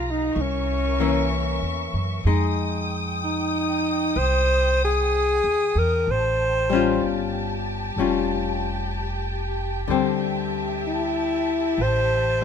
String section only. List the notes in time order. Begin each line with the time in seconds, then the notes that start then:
Already playing: G4 F5 A#5
0.35 A#4 E5 C#6
2.26 G5 D#6
6.05 G4 G5 A5
9.86 E5 A5